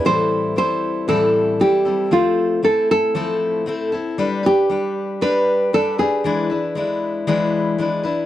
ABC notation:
X:1
M:4/4
L:1/8
Q:1/4=116
K:Am
V:1 name="Nylon-string guitar"
c2 c2 A2 G2 | F2 A A3 z2 | z G3 B2 A ^G- | ^G3 z4 z |]
V:2 name="Steel-string acoustic guitar"
[A,,E,G,CEA]2 [G,CEA]2 [A,,E,G,CEA]2 [G,CEA] [G,CEA] | [F,A,CA]2 [A,CEA]2 [F,A,CEA]2 [A,CEA] [CEA] | [G,DGB] [DGB] [G,DGB]2 [G,DGB]2 [G,DGB] [DGB] | [E,^G,DEB] [DEB] [G,DEB]2 [E,G,DEB]2 [G,DEB] [DEB] |]